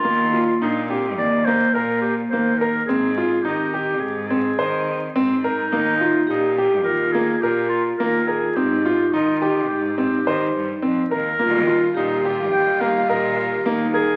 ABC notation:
X:1
M:5/4
L:1/8
Q:1/4=106
K:Eb
V:1 name="Clarinet"
F3 z d c B G c B | A2 G2 A A3 z E- | E3 z B A G F B A | G2 F2 G G3 z B- |
B3 z g f e B z A |]
V:2 name="Grand piano"
B, F E G2 B, B2 B, B | C F E G2 C c2 C B | B, F E G2 B, B2 B, B | C F E G2 C c2 C B |
B, F E G2 B, B2 B, B |]
V:3 name="Vibraphone"
B,2 D C B,6 | C8- C2 | E2 G2 F6 | E8- E z |
F2 G6 E2 |]
V:4 name="String section" clef=bass
z8 z2 | z8 z2 | z8 z2 | z8 z2 |
[E,G,F]8- [E,G,F]2 |]
V:5 name="Cello" clef=bass
E,,2 B,,2 E,,2 B,,2 E,,2 | A,,2 E,2 A,,2 E,2 A,,2 | E,,2 B,,2 E,,2 B,,2 E,,2 | A,,2 E,2 A,,2 E, G,, F,, E,, |
E,,2 B,,2 E,,2 B,,2 E,,2 |]